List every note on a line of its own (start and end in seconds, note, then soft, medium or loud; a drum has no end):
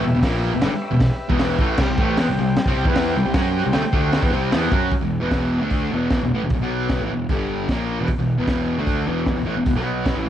0.00 0.12 E1 medium
0.00 1.73 G4 medium
0.00 1.75 B4 medium
0.00 1.76 E5 medium
0.04 0.13 E2 medium
0.04 0.13 B2 medium
0.14 0.22 E1 medium
0.14 0.23 E2 medium
0.14 0.23 B2 medium
0.22 0.50 A#1 medium
0.22 0.52 A#2 loud
0.22 0.52 F3 loud
0.22 0.52 A#3 loud
0.22 kick loud
0.22 snare loud
0.22 open hi-hat medium
0.53 0.61 E1 medium
0.53 0.61 E2 medium
0.53 0.62 B2 medium
0.61 0.71 G1 medium
0.61 0.71 G2 loud
0.61 0.71 D3 loud
0.61 snare loud
0.61 open hi-hat medium
0.71 muted distorted electric guitar stroke medium
0.71 muted fingered electric bass stroke soft
0.91 1.10 E1 medium
0.91 1.07 E2 medium
0.91 1.07 B2 medium
1.00 kick loud
1.00 snare loud
1.00 open hi-hat medium
1.29 1.57 E1 loud
1.29 1.58 E2 medium
1.29 1.58 B2 loud
1.29 1.59 E3 loud
1.29 kick loud
1.39 snare loud
1.39 open hi-hat medium
1.59 1.78 A1 medium
1.59 1.78 A2 medium
1.59 1.79 E3 loud
1.59 1.79 A3 loud
1.59 kick loud
1.78 1.88 C2 medium
1.78 1.89 C3 loud
1.78 1.89 G3 loud
1.78 4.88 G4 medium
1.78 4.89 C5 medium
1.78 4.14 G5 medium
1.78 kick loud
1.78 snare loud
1.78 crash loud
1.90 1.97 C2 medium
1.90 1.98 C3 medium
1.90 1.99 G3 medium
1.98 2.16 A1 loud
1.98 2.17 A2 medium
1.98 2.18 E3 medium
1.98 2.18 A3 loud
1.98 kick loud
2.17 2.28 E2 loud
2.17 2.28 E3 medium
2.17 2.28 B3 loud
2.17 snare loud
2.17 open hi-hat medium
2.29 2.38 C2 medium
2.29 2.38 C3 medium
2.29 2.38 G3 medium
2.39 2.57 C2 medium
2.39 2.54 C3 medium
2.39 2.54 G3 medium
2.56 snare loud
2.56 open hi-hat medium
2.66 2.85 C2 medium
2.66 2.86 C3 medium
2.66 2.86 G3 loud
2.66 2.87 C4 loud
2.66 kick loud
2.85 3.13 E2 loud
2.85 3.15 E3 medium
2.85 3.16 B3 loud
2.85 3.16 E4 loud
2.85 kick loud
2.95 snare loud
2.95 open hi-hat medium
3.16 3.25 C2 medium
3.16 3.24 C3 medium
3.16 3.25 G3 medium
3.26 3.34 C2 medium
3.26 3.34 C3 medium
3.26 3.34 G3 medium
3.34 3.62 F#2 medium
3.34 3.63 F#3 loud
3.34 3.63 C#4 loud
3.34 3.64 F#4 loud
3.34 kick loud
3.34 snare loud
3.34 open hi-hat medium
3.64 3.75 C2 medium
3.64 3.72 C3 medium
3.64 3.72 G3 medium
3.72 3.84 D2 medium
3.72 3.82 D3 medium
3.72 3.83 A3 loud
3.72 snare loud
3.72 open hi-hat medium
3.82 muted distorted electric guitar stroke medium
3.82 muted fingered electric bass stroke soft
3.92 4.21 D2 medium
3.92 4.22 D3 loud
3.92 4.22 A3 medium
3.92 4.23 D4 loud
3.92 kick loud
3.96 4.14 F#5 medium
4.13 4.51 G5 medium
4.13 snare loud
4.13 open hi-hat medium
4.22 4.32 E2 loud
4.22 4.31 E3 loud
4.22 4.32 B3 loud
4.22 kick loud
4.31 4.52 C2 loud
4.31 4.51 C3 medium
4.31 4.52 G3 medium
4.31 4.52 C4 loud
4.52 4.72 E2 medium
4.52 4.71 E3 medium
4.52 4.72 B3 medium
4.52 4.72 E4 loud
4.52 4.78 A5 medium
4.52 snare loud
4.52 open hi-hat medium
4.71 4.91 F#2 medium
4.71 4.91 F#3 medium
4.71 4.92 C#4 medium
4.71 4.92 F#4 loud
4.71 kick loud
4.81 4.92 B5 medium
4.91 kick loud
4.91 open hi-hat soft
5.02 5.22 E1 medium
5.02 5.18 E2 medium
5.02 5.18 B2 medium
5.20 5.60 E1 medium
5.20 5.60 E2 medium
5.20 5.60 B2 medium
5.20 5.61 E3 medium
5.31 kick loud
5.31 snare loud
5.31 open hi-hat soft
5.60 5.89 D2 medium
5.60 5.90 D3 medium
5.60 5.90 A3 medium
5.60 5.91 D4 loud
5.70 kick medium
5.70 open hi-hat soft
5.91 6.19 E1 medium
5.91 6.21 E2 medium
5.91 6.21 B2 medium
5.91 6.21 E3 medium
6.10 kick loud
6.10 snare loud
6.10 open hi-hat soft
6.21 6.30 E1 medium
6.21 6.32 E2 medium
6.21 6.32 B2 medium
6.31 6.40 A1 medium
6.31 6.41 A2 medium
6.31 6.42 E3 medium
6.41 6.50 E1 medium
6.41 6.52 E2 medium
6.41 6.52 B2 medium
6.50 6.58 E1 medium
6.50 6.62 E2 medium
6.50 6.60 B2 medium
6.50 kick loud
6.50 open hi-hat soft
6.59 6.96 B1 medium
6.59 7.00 B2 medium
6.63 7.01 F#3 medium
6.63 7.01 B3 medium
6.89 kick loud
6.89 snare loud
6.89 open hi-hat soft
7.00 7.09 A1 medium
7.00 7.10 A2 medium
7.00 7.11 E3 medium
7.10 7.28 E1 medium
7.10 7.27 E2 medium
7.10 7.27 B2 medium
7.29 7.66 G1 medium
7.29 7.69 G2 medium
7.29 7.69 D3 loud
7.29 7.69 G3 loud
7.29 kick loud
7.29 open hi-hat soft
7.69 7.97 A#1 medium
7.69 7.99 A#2 medium
7.69 7.99 F3 medium
7.69 7.99 A#3 loud
7.69 kick loud
7.69 snare loud
7.69 open hi-hat soft
7.99 8.09 E1 medium
7.99 8.08 E2 medium
7.99 8.09 B2 medium
8.08 kick loud
8.08 open hi-hat medium
8.18 8.38 E1 medium
8.18 8.34 E2 medium
8.18 8.35 B2 medium
8.38 8.76 E1 medium
8.38 8.77 E2 medium
8.38 8.77 B2 medium
8.38 8.78 E3 loud
8.47 kick loud
8.47 snare loud
8.47 open hi-hat soft
8.77 9.06 D2 medium
8.77 9.07 D3 medium
8.77 9.07 A3 medium
8.77 9.07 D4 loud
8.87 kick loud
8.87 open hi-hat soft
9.06 9.35 E1 medium
9.06 9.36 E2 medium
9.06 9.36 B2 medium
9.06 9.37 E3 loud
9.26 kick loud
9.26 snare loud
9.26 open hi-hat soft
9.37 9.45 E1 medium
9.37 9.47 E2 medium
9.37 9.45 B2 medium
9.45 9.56 A1 medium
9.45 9.55 A2 medium
9.45 9.56 E3 medium
9.56 9.66 E1 medium
9.56 9.65 E2 medium
9.56 9.66 B2 medium
9.66 9.76 E1 medium
9.66 9.77 E2 medium
9.66 9.74 B2 medium
9.66 kick loud
9.66 open hi-hat medium
9.76 10.13 B1 medium
9.76 10.15 B2 medium
9.76 10.16 F#3 medium
9.76 10.16 B3 medium
10.06 kick loud
10.06 snare loud
10.06 open hi-hat soft
10.16 10.25 A1 medium
10.16 10.26 A2 medium
10.16 10.26 E3 medium
10.25 10.29 E1 medium